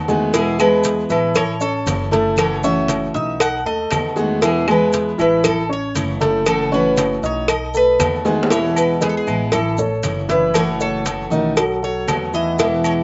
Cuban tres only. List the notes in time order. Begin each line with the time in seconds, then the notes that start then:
0.36 G#4
0.61 B4
1.10 B4
1.36 C#5
1.62 A4
2.39 C#5
2.64 E5
3.14 E5
3.41 F#5
3.66 D#5
4.45 G#4
4.71 B4
5.21 B4
5.47 A4
5.73 C#5
6.48 A4
6.74 B4
7.25 C#5
7.50 D#5
7.77 B4
8.52 C#5
8.77 B4
9.03 G#4
9.09 A4
9.17 G#4
9.54 A4
10.31 B4
10.57 C#5
10.82 A4
11.84 C#5
12.35 D#5
12.86 C#5